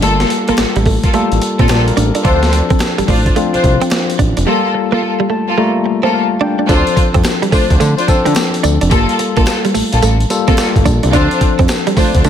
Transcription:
0.02 G1 G3 A3 A#3 F4 A4, closed hi-hat
0.09 A#3
0.20 snare, closed hi-hat
0.30 muted clean electric guitar stroke, closed hi-hat
0.48 A1 A#3 F4 A4, closed hi-hat
0.58 A1, muted clean electric guitar stroke, snare, clap, closed hi-hat
0.76 A1 G3, closed hi-hat
0.86 A3, kick, open hi-hat
1.03 A#3 F4 A4, kick, closed hi-hat
1.13 G3 A3 A#3 F4 A4, closed hi-hat
1.32 A1, closed hi-hat
1.42 muted clean electric guitar stroke, closed hi-hat
1.59 A#1 A#3 C4 F4 A4, kick, closed hi-hat
1.69 A#1 A#4 D5, muted clean electric guitar stroke, snare, clap, closed hi-hat
1.87 G4 A#4, closed hi-hat
1.97 A1 D4, closed hi-hat
2.15 D4 F4 A4, closed hi-hat
2.24 D2 F3 C4 D4 F4 A4 C5, kick, closed hi-hat
2.43 snare, closed hi-hat
2.53 muted clean electric guitar stroke, closed hi-hat
2.70 C4, kick, closed hi-hat
2.80 muted clean electric guitar stroke, snare, clap, closed hi-hat
2.98 A1 G3, closed hi-hat
3.07 A1 A3 D4 F4 C5, kick, open hi-hat
3.26 kick, closed hi-hat
3.35 F3 A3 C4 D4 F4, closed hi-hat
3.53 C2 D4 F4 C5, closed hi-hat
3.64 C2, muted clean electric guitar stroke, kick, closed hi-hat
3.81 C4, closed hi-hat
3.91 muted clean electric guitar stroke, snare, clap, closed hi-hat
4.10 closed hi-hat
4.19 A1 D4, kick, closed hi-hat
4.37 F1 D4, closed hi-hat
4.46 G3 A#3 F4 A4
4.74 muted clean electric guitar stroke
4.92 A#3 F4 A4
5.02 muted clean electric guitar stroke
5.20 G3
5.30 A3 A5
5.48 A#3 F4 A4
5.57 G3 A3 A#3 F4 A#5
5.86 muted clean electric guitar stroke
6.03 A#3 C4 F4 A4 A5
6.13 F5, muted clean electric guitar stroke
6.41 D4 G5
6.59 D4
6.69 D2 F3 C4 D4 F4 A4 C5, kick, closed hi-hat, tambourine
6.87 closed hi-hat
6.96 muted clean electric guitar stroke, kick, closed hi-hat
7.14 F2 C4, kick, closed hi-hat
7.24 muted clean electric guitar stroke, snare, clap, closed hi-hat, tambourine
7.42 G3, closed hi-hat
7.52 D2 A3 D4 F4 C5, kick, open hi-hat, tambourine
7.70 D2, kick, closed hi-hat
7.80 D3 A3, closed hi-hat, tambourine
7.98 D4 F4 C5, closed hi-hat
8.08 D3 F3 C4 D4 A4, muted clean electric guitar stroke, kick, closed hi-hat, tambourine
8.25 D3 C4, closed hi-hat
8.36 muted clean electric guitar stroke, snare, clap, closed hi-hat, tambourine
8.54 closed hi-hat
8.63 D2 D4, closed hi-hat, tambourine
8.81 F1 D4, closed hi-hat
8.91 G1 G3 A#3 F4 A4, kick, closed hi-hat, tambourine
9.09 closed hi-hat
9.19 muted clean electric guitar stroke, closed hi-hat
9.36 A#1 A#3 F4 A4, kick, closed hi-hat
9.47 muted clean electric guitar stroke, snare, clap, closed hi-hat, tambourine
9.65 G3, closed hi-hat
9.74 A#1 A3, open hi-hat, tambourine
9.92 A#1 A#3 F4 A4, closed hi-hat
10.02 A1 A3, closed hi-hat, tambourine
10.20 closed hi-hat
10.30 G3 A#3 F4 A4, muted clean electric guitar stroke, closed hi-hat, tambourine
10.48 A#3 C4 F4 A4, kick, closed hi-hat
10.58 muted clean electric guitar stroke, snare, clap, closed hi-hat, tambourine
10.76 G1, kick, closed hi-hat
10.85 A#1 D4, kick, closed hi-hat, tambourine
11.03 C2 D4, closed hi-hat
11.13 D2 F3 C4 D4 F4 A4 C5, kick, closed hi-hat, tambourine
11.31 closed hi-hat
11.41 muted clean electric guitar stroke, kick, closed hi-hat
11.59 F2 C4, kick, closed hi-hat
11.69 muted clean electric guitar stroke, snare, clap, closed hi-hat, tambourine
11.87 G3, closed hi-hat
11.96 D2 A3 D4 F4 C5, kick, open hi-hat, tambourine
12.15 D2, kick, closed hi-hat
12.24 D3 A3, closed hi-hat, tambourine

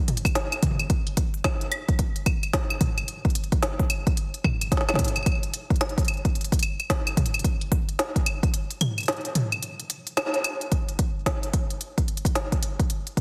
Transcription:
0.08 closed hi-hat, mid tom
0.17 closed hi-hat
0.25 kick, closed hi-hat, claves
0.35 snare, closed hi-hat
0.52 closed hi-hat, claves
0.63 kick, closed hi-hat, mid tom
0.67 mid tom
0.71 mid tom
0.75 mid tom
0.79 closed hi-hat, mid tom, claves
0.82 mid tom
0.85 mid tom
0.87 kick, closed hi-hat, mid tom
1.07 closed hi-hat
1.17 kick, closed hi-hat
1.34 closed hi-hat
1.44 kick, snare, closed hi-hat, claves
1.61 closed hi-hat
1.72 closed hi-hat, claves
1.89 kick, closed hi-hat
1.99 kick, closed hi-hat
2.16 closed hi-hat
2.26 kick, closed hi-hat, claves
2.43 closed hi-hat, claves
2.53 kick, snare, closed hi-hat
2.70 closed hi-hat, claves
2.81 kick, closed hi-hat, mid tom
2.98 closed hi-hat, claves
3.08 closed hi-hat
3.25 kick, closed hi-hat
3.30 closed hi-hat
3.35 closed hi-hat
3.44 closed hi-hat
3.52 kick, closed hi-hat
3.63 snare, closed hi-hat
3.79 kick, closed hi-hat
3.90 closed hi-hat, claves
4.07 kick, closed hi-hat
4.17 closed hi-hat
4.34 closed hi-hat
4.44 kick, mid tom, claves
4.61 closed hi-hat, claves
4.72 kick, snare, closed hi-hat
4.77 snare
4.81 snare
4.89 snare, closed hi-hat, claves
4.94 snare, mid tom
4.99 kick, closed hi-hat
5.04 closed hi-hat
5.08 closed hi-hat
5.16 closed hi-hat, claves
5.23 kick, closed hi-hat, claves
5.26 claves
5.32 claves
5.35 claves
5.43 closed hi-hat
5.54 closed hi-hat
5.70 kick, closed hi-hat
5.76 closed hi-hat
5.81 snare, closed hi-hat, claves
5.89 closed hi-hat
5.98 kick, closed hi-hat
6.05 closed hi-hat
6.08 closed hi-hat, claves
6.14 closed hi-hat
6.17 closed hi-hat
6.25 kick, closed hi-hat
6.35 closed hi-hat
6.41 closed hi-hat
6.44 closed hi-hat
6.52 kick, closed hi-hat
6.59 closed hi-hat
6.63 closed hi-hat, claves
6.80 closed hi-hat, claves
6.90 kick, snare, closed hi-hat
7.07 closed hi-hat, claves
7.17 kick, closed hi-hat, mid tom
7.26 closed hi-hat
7.34 closed hi-hat, claves
7.39 closed hi-hat
7.44 kick, closed hi-hat
7.61 closed hi-hat
7.72 kick, closed hi-hat
7.89 closed hi-hat
7.99 snare, closed hi-hat
8.16 kick, closed hi-hat
8.26 closed hi-hat, claves
8.43 kick, closed hi-hat
8.54 closed hi-hat
8.71 closed hi-hat
8.81 closed hi-hat, mid tom, claves
8.98 closed hi-hat, claves
9.00 closed hi-hat
9.03 closed hi-hat
9.06 snare, closed hi-hat
9.08 closed hi-hat
9.17 closed hi-hat
9.21 closed hi-hat
9.25 closed hi-hat
9.35 closed hi-hat, mid tom
9.52 closed hi-hat, claves
9.63 closed hi-hat
9.80 closed hi-hat
9.90 closed hi-hat
10.07 closed hi-hat
10.17 snare, closed hi-hat, claves
10.34 closed hi-hat
10.44 closed hi-hat, claves
10.61 closed hi-hat
10.72 kick, closed hi-hat
10.89 closed hi-hat
10.99 kick, closed hi-hat
11.26 kick, snare, closed hi-hat
11.43 closed hi-hat
11.53 kick, closed hi-hat
11.70 closed hi-hat
11.81 closed hi-hat
11.98 kick, closed hi-hat
12.08 closed hi-hat
12.17 closed hi-hat
12.25 kick, closed hi-hat
12.35 snare, closed hi-hat
12.52 kick, closed hi-hat
12.63 closed hi-hat
12.79 kick, closed hi-hat
12.90 closed hi-hat
13.07 closed hi-hat
13.17 kick, closed hi-hat

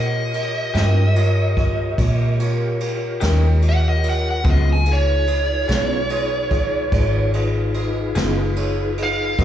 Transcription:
Already playing: A#2 F4 G4 A#4 C#5 D#5
0.34 F4 G4 A#4 C#5, ride
0.74 G2 D#3 A#3 C#4 F4 G4 A#4 D#5, snare, ride
1.16 F4 G4 A#4 C#5, ride
1.57 F4 G4 A#4 C#5, kick, ride
1.98 A#2 F4 G4 A#4 C#5, kick, ride
2.40 F4 G4 A#4 C#5, ride
2.80 F4 G4 A#4 C#5, ride
3.20 D#2 D#3 A#3 C#4 F4 G4 A#4 D#5, snare, ride
3.62 F4 G4 A#4 D#5, ride
3.69 F#5
3.89 D#5
4.03 F4 G4 A#4 D#5, ride
4.09 F#5
4.31 F#5
4.44 C#2 C#3 F#3 A3 B3 C4 F4 G#4 B4 D#5, kick, ride
4.51 D#5
4.73 G#5
4.86 D#4 F4 G#4 B4 F5, ride
4.93 C#5
5.27 F4 G#4 B4 D#5, ride
5.68 B1 C#3 B3 F4 G#4 B4 C#5, snare, ride
6.10 F4 G#4 B4 D#5, ride
6.51 F4 G#4 B4 D#5, kick, ride
6.92 G#1 F4 G#4 B4 D#5, kick, ride
7.34 F4 G#4 B4 D#5, ride
7.74 F4 G#4 B4 D#5, ride
8.15 F#1 C#3 B3 F4 G#4 B4 D#5, snare, ride
8.56 F4 G#4 B4 C#5, ride
8.98 F4 G#4 B4 D#5, ride
9.03 F5
9.38 G#1 G#2 F#3 C4 D#4 F#4 A#4 C5 D#5, kick, ride

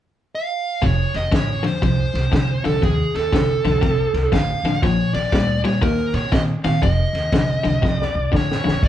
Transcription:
0.35 F5
0.82 F1 F2 C3 C#5, kick, snare, ride
1.14 F1 D#5, snare, ride
1.31 A1 F2 D3 C#5, kick, snare, ride
1.63 F2 D3 C5, snare, ride
1.82 C2 F2 C3 C5, kick, snare, ride
2.14 C2, snare, ride
2.32 C2 F2 D3, kick, snare, ride
2.64 C2 F2 D3 A4, snare, ride
2.82 D#2 F2 C3 G#4, kick, snare, ride
3.15 D#2 A4, snare, ride
3.32 C2 F2 D3, kick, snare, ride
3.64 C2 F2 D3, snare, ride
3.81 C2 F2 C3, kick, snare, ride
4.14 C2, snare, ride
4.32 A1 F2 D3 F5, kick, snare, ride
4.63 A1 F2 D3, snare, ride
4.82 A#1 A#2 F3 C#5, kick, snare, ride
5.13 A#1 D5, snare, ride
5.32 D2 A#2 G3, kick, snare, ride
5.64 A#2 G3 C#5, snare, ride
5.82 D#2 D#3 A#3 A#4, kick, snare, ride
6.13 A#2 C#5, snare, ride
6.32 A#2 D#3 C4 D#5, kick, snare, ride
6.64 A#2 D#3 C4 F5, snare, ride
6.82 F1 F2 C3 D#5, kick, snare, ride
7.13 D#2, snare, ride
7.32 C2 F2 D3, kick, snare, ride
7.63 C2 F2 D3, snare, ride
7.82 C2 F2 C3, kick, snare
7.97 D5
8.02 snare
8.15 C2
8.32 A1 F2 D3, kick, snare
8.36 C#5
8.52 snare
8.64 A1 F2 D3
8.68 snare
8.83 A#1, kick, crash

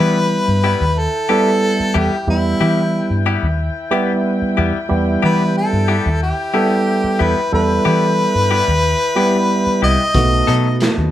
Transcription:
Already playing: G3 B3 E4 G4 B4 G5
0.00 E3 G3 B3 E4
0.48 G2
0.64 G3 B3 E4 G4
0.81 D#2
0.98 A4
1.29 G3 B3 E4 G4 A4
1.80 muted fingered electric bass stroke
1.94 E2 G3 B3 E4 G4
2.27 E2 G3 B3 E4 G4
2.61 E3 G3 B3 E4 G4
3.10 G2
3.26 G3 B3 E4 G4
3.43 D#2
3.91 G3 B3 E4 G4
4.42 muted fingered electric bass stroke
4.57 E2 G3 B3 E4 G4
4.89 E2 G3 B3 E4 G4
5.22 E3 G3 B3 E4 G4 B4
5.57 A4
5.73 G2
5.88 G3 B3 E4 G4
6.06 D#2
6.23 G4
6.54 G3 B3 E4 G4 A4
7.04 muted fingered electric bass stroke
7.19 E2 G3 B3 E4 G4 B4
7.52 E2 G3 B3 E4 A4 B4
7.85 E3 G3 B3 E4 G4
8.35 G2
8.51 G3 B3 E4 G4
8.68 D#2
9.15 G3 B3 E4 G4
9.66 muted fingered electric bass stroke
9.82 C2 G3 B3 E4 G4 D#5
10.15 B1 A3 B3 D#4 F#4 D#5 A5, kick, closed hi-hat
10.47 B2 F#3 B3 D#4 A4, closed hi-hat
10.80 snare, closed hi-hat
10.98 D#2

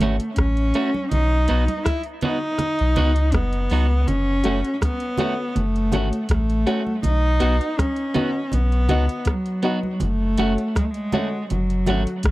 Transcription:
Already playing: A3
0.00 G#1 A3 C#4 F#4, closed hi-hat, low conga
0.20 closed hi-hat
0.36 A1 C#4, kick, cross-stick, closed hi-hat, high conga
0.57 closed hi-hat
0.74 A3 C#4 F#4, closed hi-hat
0.94 high conga
1.11 B1 D#4, closed hi-hat, low conga
1.48 B1 B3 D#4 F#4, closed hi-hat
1.68 closed hi-hat, high conga
1.84 E4, kick, cross-stick, closed hi-hat, high conga
2.03 closed hi-hat
2.21 B3 D#4 F#4, closed hi-hat, high conga, low conga
2.58 cross-stick, closed hi-hat, low conga
2.79 B1, closed hi-hat
2.96 C#2 B3 D#4 F#4, closed hi-hat, low conga
3.16 closed hi-hat
3.32 F#1 B3, kick, cross-stick, closed hi-hat, high conga
3.53 closed hi-hat
3.70 C#2 B3 D#4 F#4, open hi-hat, high conga
4.08 F#1 C#4, closed hi-hat, low conga
4.44 F#1 A3 C#4 F#4 A4 C#5 F#5, closed hi-hat
4.64 closed hi-hat
4.73 C#4
4.81 B3, kick, cross-stick, closed hi-hat, high conga
5.00 closed hi-hat
5.18 A3 C#4 F#4 A4 C#5 F#5, closed hi-hat, low conga
5.55 F#1 A3, closed hi-hat, low conga
5.76 closed hi-hat
5.92 G#1 A3 C#4 F#4 A4 C#5 F#5, closed hi-hat, low conga
6.13 closed hi-hat
6.29 A1 A3, kick, cross-stick, closed hi-hat, high conga
6.50 closed hi-hat
6.66 A3 C#4 F#4 A4 C#5 F#5, closed hi-hat
6.87 high conga
7.03 B1 D#4, closed hi-hat, low conga
7.40 B1 B3 D#4 F#4 B4 D#5 F#5, closed hi-hat
7.61 closed hi-hat
7.78 C#4, kick, cross-stick, closed hi-hat, high conga
7.96 closed hi-hat
8.14 B3 D#4 F#4 B4 D#5 F#5, closed hi-hat, low conga
8.52 B1 B3, closed hi-hat, low conga
8.72 closed hi-hat
8.89 C#2 B3 D#4 F#4 B4 D#5 F#5, closed hi-hat, low conga
9.09 closed hi-hat
9.25 kick, cross-stick, closed hi-hat, high conga
9.29 F#3
9.46 closed hi-hat
9.63 B3 D#4 F#4 B4 D#5 F#5, closed hi-hat
9.83 high conga
10.00 F#1 A3, closed hi-hat, low conga
10.37 F#1 A3 C#4 F#4 A4 C#5 F#5, closed hi-hat
10.58 closed hi-hat
10.75 G#3, kick, cross-stick, closed hi-hat, high conga
10.85 A3
10.91 G#3, closed hi-hat
11.12 A3 C#4 F#4 A4 C#5 F#5, closed hi-hat, low conga
11.50 F#1 F#3, closed hi-hat, low conga
11.70 closed hi-hat
11.86 G#1 A3 C#4 F#4 A4 C#5 F#5, closed hi-hat, low conga
12.07 closed hi-hat
12.23 A1 A3, kick, cross-stick, closed hi-hat, high conga

